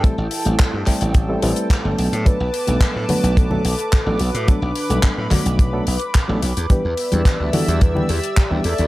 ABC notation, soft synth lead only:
X:1
M:4/4
L:1/16
Q:1/4=108
K:Bphr
V:1 name="Soft synth lead"
E8 z8 | B6 B2 A6 F2 | D8 z8 | B6 A G B2 G4 A2 |]